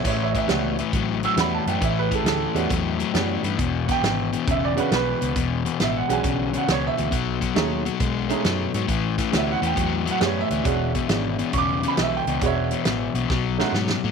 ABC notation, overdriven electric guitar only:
X:1
M:4/4
L:1/8
Q:"Swing" 1/4=136
K:Emix
V:1 name="Overdriven electric guitar" clef=bass
[A,,E,] [A,,E,] [A,,E,] [A,,E,] [A,,F,] [A,,F,] [A,,E,] [A,,E,] | [A,,E,] [A,,E,] [A,,E,] [A,,E,] [A,,F,] [A,,F,] [A,,E,] [A,,E,] | [E,,B,,] [E,,B,,] [E,,B,,] [E,,B,,] [E,,C,] [E,,C,] [E,,B,,] [E,,B,,] | [E,,B,,] [E,,B,,] [E,,B,,] [E,,B,,] [E,,C,] [E,,C,] [E,,B,,] [E,,B,,] |
[B,,F,] [B,,F,] [B,,F,] [B,,F,] [B,,G,] [B,,G,] [B,,F,] [B,,F,] | [A,,E,] [A,,E,] [A,,E,] [A,,E,] [A,,F,] [A,,F,] [A,,E,] [A,,E,] | [E,,B,,] [E,,B,,] [E,,B,,] [E,,B,,] [E,,C,] [E,,C,] [E,,B,,] [E,,B,,] | [E,,B,,] [E,,B,,] [E,,B,,] [E,,B,,] [B,,F,] [B,,G,] [B,,F,] [B,,F,] |]